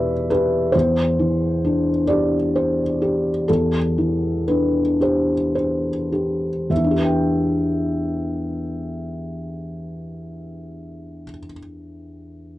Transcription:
Already playing: E2 B2 E4 G4 B4 D5 E5
0.30 G4 B4
0.72 E2 C5
1.19 E3
1.65 D4
2.08 G4 D5
2.56 C5
3.02 G4
3.48 E2 A4
3.98 E3
4.48 D4 B4
5.01 G4 C5
5.55 C5
6.12 G4
6.70 E2 E5
6.77 E3
6.84 D4
6.91 G4
6.98 B4
7.05 G5

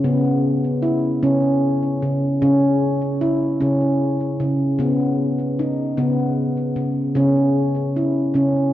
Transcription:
0.04 C#3 B3
0.82 E4
1.22 C#3 C#4
2.02 C#3
2.42 C#3 C#4
3.21 E4
3.61 C#3 C#4
4.40 C#3
4.79 C#3 B3
5.59 D#4
5.97 C#3 B3
6.76 C#3
7.15 C#3 C#4
7.96 E4
8.34 C#3 C#4

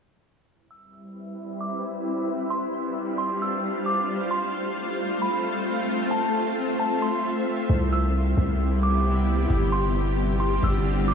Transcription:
0.48 G3 C4 E4 B4 E5
0.71 E6
1.61 D6
2.28 G3 D4 F4 C5 F5
2.50 C6
3.18 C6
3.42 E6
3.86 D6
4.09 A3 C4 F4
4.31 C6
5.22 B5
5.89 E5
6.11 A5
6.80 A5
7.02 C6
7.70 C2 C3 G3 B3 E4 G4
7.93 E6
8.37 C2
8.83 D6
9.50 G1 D3 G3 C4 F4
9.72 C6
10.40 C6
10.63 G1 E6
11.08 D6

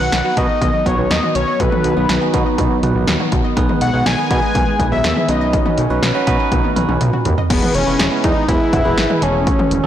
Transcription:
Already playing: D#3 F#3 B3 F#5
0.00 B1 B3 D#4 F#4 B4
0.12 B1 D#3, snare, closed hi-hat
0.25 B3 D#4 F#4 B4
0.37 B2 D#3 B3 D#4 F#4 A4 D#5, kick, closed hi-hat
0.49 D#5
0.61 B1 D#3, kick, closed hi-hat
0.74 F#3
0.86 B1 B3 D#4 F#4 B4 C#5, kick, closed hi-hat, mid tom
0.98 B1 B3
1.11 D#2 D#3 D#5, snare, closed hi-hat
1.23 F#4, mid tom
1.35 B1 D#3 C#5, closed hi-hat
1.48 D#5
1.60 B1 D#3 B3 D#4 F#4 A4 B4, kick, closed hi-hat
1.72 F#3, mid tom
1.84 B1 D#3, closed hi-hat
1.97 B1 B3 D#4 F#4 B4
2.09 B1 D#3, snare, closed hi-hat
2.21 B3 D#4 F#4 G#4
2.34 B2 D#3 B3 D#4 F#4 B4, kick, closed hi-hat
2.46 D#5
2.58 B1 D#3, kick, closed hi-hat
2.71 F#3
2.83 B1 B3 D#4 F#4 B4, closed hi-hat, mid tom
2.95 B1 B3
3.07 D#2 D#3, snare, closed hi-hat
3.20 F#4, mid tom
3.32 B1 D#3, kick, closed hi-hat
3.44 D#5
3.56 B1 D#3 G#3 B3 D#4 G#4 B4, kick, closed hi-hat
3.69 G#3, mid tom
3.81 B1 D#3 F#5, closed hi-hat
3.94 B1 B3 D#4 G#4 C#5
4.06 B1 D#3 G#5, snare, closed hi-hat
4.18 B3 D#4 G#4 B4
4.30 B2 D#3 B3 D#4 G#4 B4 G#5, kick, closed hi-hat
4.43 D#5
4.55 B1 D#3, kick, closed hi-hat
4.67 G#3
4.79 B1 D#3 B3 G#4 B4, kick, closed hi-hat, mid tom
4.92 B1 B3 E5
5.04 D#2 D#3, snare, closed hi-hat
5.17 G#4, mid tom
5.29 B1 D#3 C#4 D#4 F#4 B4 D#5, closed hi-hat
5.41 D#5
5.53 D#3, kick, closed hi-hat
5.66 B3, mid tom
5.78 B1 D#3, closed hi-hat
5.90 B1 C#4 D#4 F#4 B4
6.02 B1 D#3, snare, closed hi-hat
6.15 C#4 D#4 F#4 B4
6.27 B2 D#3 C#4 D#4 F#4 B4, kick, closed hi-hat
6.40 D#5
6.52 B1 D#3, kick, closed hi-hat, high tom
6.64 B3, high tom
6.76 B1 C#4 D#4 F#4 B4, closed hi-hat, mid tom
6.89 B1 C#4, mid tom
7.01 B1 D#3, closed hi-hat, mid tom
7.13 F#4, mid tom
7.25 D#2 D#3, closed hi-hat, floor tom
7.38 D#5, floor tom
7.50 E1 G#3 B3 E4 G#4 B4, kick, closed hi-hat, crash
7.63 mid tom
7.75 E1 C#4, closed hi-hat
7.87 E1 G#3 B3 E4 G#4 B4
7.99 E1, snare, closed hi-hat
8.11 G#3 B3 E4 G#4 B4
8.24 E2 D#4, kick, closed hi-hat
8.48 E1 G#3 B3 E4 G#4 B4, kick, closed hi-hat
8.73 E1, kick, closed hi-hat, mid tom, cowbell
8.85 E1 G#3 B3 E4 G#4 B4
8.98 G#1, snare, closed hi-hat
9.10 G#3 B3 E4 G#4 B4, mid tom
9.22 E1 A3 C#4 F#4 G#4 A4, closed hi-hat
9.47 kick, closed hi-hat
9.59 mid tom
9.71 E1, closed hi-hat
9.84 E1 A3 C#4 F#4 G#4 A4

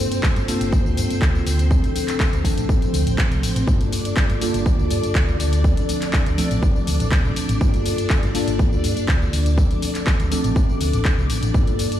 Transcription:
Already playing: G3 A#3 C4 D4 F4 A4 C5
0.12 closed hi-hat, tambourine
0.23 kick, clap, tambourine
0.36 G2, closed hi-hat, tambourine
0.47 G3 A#3 D4 F4 A4, muted fingered electric bass stroke, open hi-hat, tambourine
0.61 G1, closed hi-hat, tambourine
0.72 muted fingered electric bass stroke, kick, tambourine
0.85 D2, tambourine
0.97 G2, open hi-hat, tambourine
1.10 muted fingered electric bass stroke, closed hi-hat, tambourine
1.22 D2, kick, clap, tambourine
1.35 tambourine
1.46 D2, open hi-hat, tambourine
1.59 closed hi-hat, tambourine
1.70 F3 A3 C4 D4 A4, kick, tambourine
1.84 closed hi-hat, tambourine
1.96 open hi-hat, tambourine
2.08 clap, closed hi-hat, tambourine
2.20 kick, clap, tambourine
2.33 D2, closed hi-hat, tambourine
2.44 F3 A3 C4 D4 A4, muted fingered electric bass stroke, kick, open hi-hat, tambourine
2.57 A1, closed hi-hat, tambourine
2.69 A1, kick, tambourine
2.82 muted fingered electric bass stroke, closed hi-hat, tambourine
2.93 D2, open hi-hat, tambourine
3.06 A1, closed hi-hat, tambourine
3.18 kick, clap, tambourine
3.31 C2, closed hi-hat, tambourine
3.43 A1, open hi-hat, tambourine
3.56 A1, closed hi-hat, tambourine
3.67 G2 G3 A#3 D4 F4 A4 D5, kick, tambourine
3.81 closed hi-hat, tambourine
3.93 open hi-hat, tambourine
4.05 closed hi-hat, tambourine
4.17 kick, clap, tambourine
4.29 G2, closed hi-hat, tambourine
4.41 G3 A#3 D4 F4 A4, muted fingered electric bass stroke, open hi-hat, tambourine
4.54 G1, closed hi-hat, tambourine
4.66 muted fingered electric bass stroke, kick, tambourine
4.79 D2, tambourine
4.90 G2, open hi-hat, tambourine
5.03 muted fingered electric bass stroke, closed hi-hat, tambourine
5.15 D2, kick, clap, tambourine
5.29 tambourine
5.40 D2, open hi-hat, tambourine
5.53 closed hi-hat, tambourine
5.63 F3 A3 C4 D4 A4, kick, tambourine
5.77 closed hi-hat, tambourine
5.89 open hi-hat, tambourine
6.02 clap, closed hi-hat, tambourine
6.13 kick, clap, tambourine
6.26 D2, closed hi-hat, tambourine
6.37 F3 A3 C4 D4 A4, muted fingered electric bass stroke, open hi-hat, tambourine
6.51 A1, closed hi-hat, tambourine
6.63 A1, kick, tambourine
6.76 muted fingered electric bass stroke, tambourine
6.87 D2, open hi-hat, tambourine
7.00 A1, closed hi-hat, tambourine
7.12 D2, kick, clap, tambourine
7.25 A1, tambourine
7.36 muted fingered electric bass stroke, open hi-hat, tambourine
7.49 A1, closed hi-hat, tambourine
7.60 G2 G3 A#3 D4 F4 A4, kick, tambourine
7.74 closed hi-hat, tambourine
7.86 open hi-hat, tambourine
7.98 closed hi-hat, tambourine
8.10 kick, clap, tambourine
8.23 G2, closed hi-hat, tambourine
8.34 G3 A#3 D4 F4 A4, muted fingered electric bass stroke, open hi-hat, tambourine
8.48 G1, closed hi-hat, tambourine
8.59 muted fingered electric bass stroke, kick, tambourine
8.72 D2, tambourine
8.84 G2, open hi-hat, tambourine
8.97 muted fingered electric bass stroke, closed hi-hat, tambourine
9.08 D2, kick, clap, tambourine
9.22 tambourine
9.33 D2, open hi-hat, tambourine
9.46 closed hi-hat, tambourine
9.57 F3 A3 C4 D4 A4, kick, tambourine
9.71 closed hi-hat, tambourine
9.82 open hi-hat, tambourine
9.95 clap, closed hi-hat, tambourine
10.07 kick, clap, tambourine
10.20 D2, closed hi-hat, tambourine
10.31 F3 A3 C4 D4 A4, muted fingered electric bass stroke, open hi-hat, tambourine
10.44 A1, closed hi-hat, tambourine
10.56 A1, kick, tambourine
10.69 muted fingered electric bass stroke, tambourine
10.81 D2, open hi-hat, tambourine
10.93 A1, closed hi-hat, tambourine
11.05 kick, clap, tambourine
11.18 C2, tambourine
11.30 A1, open hi-hat, tambourine
11.43 A1, closed hi-hat, tambourine
11.54 G2 G3 A#3 D4 F4 A4 D5, kick, tambourine
11.67 closed hi-hat, tambourine
11.79 open hi-hat, tambourine
11.92 closed hi-hat, tambourine

